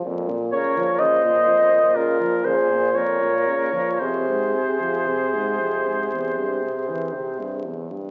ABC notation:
X:1
M:4/4
L:1/16
Q:1/4=59
K:Bbdor
V:1 name="Clarinet"
z2 d2 e4 B2 c2 d4 | c12- c2 z2 |]
V:2 name="Oboe"
z2 d2 e4 B2 c2 d4 | c12- c2 z2 |]
V:3 name="Flute"
z2 B2 c4 F2 A2 B4 | A12- A2 z2 |]
V:4 name="Bassoon" clef=bass
B,,16 | C,12- C,2 z2 |]
V:5 name="French horn" clef=bass
F,, B,, D, F, D, B,, F,, B,, D, F, D, B,, F,, B,, D, F, | F,, A,, C, F, C, A,, F,, A,, =E,, G,, C, =E, C, G,, E,, G,, |]